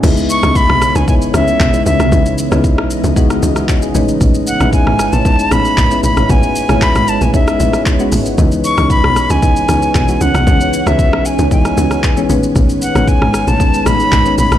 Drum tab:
CC |x---------------|----------------|----------------|----------------|
HH |----------------|----------------|----------------|--------------o-|
SH |xxxxx-xxxxxxxxxx|xxxxx-xxxxxxxxxx|xxxxx-xxxxxxxxxx|xxxxxxxxxxxxxxxx|
CP |------------x---|------------x---|------------x---|----x-------x---|
SD |---r-rr---r----r|---r-r---r-r----|---r-rr---r----r|---r-r---r-r----|
BD |o---o---o---o---|o---o---o---o---|o---o---o---o---|o---o---o---o---|

CC |----------------|----------------|----------------|
HH |----------------|----------------|----------------|
SH |xxxxx-xxxxxxxxxx|xxxxx-xxxxxxxxxx|xxxxx-xxxxxxxxxx|
CP |------------x---|------------x---|------------x---|
SD |---r-rr---r----r|---r-r---r-r----|---r-rr---r----r|
BD |o---o---o---o---|o---o---o---o---|o---o---o---o---|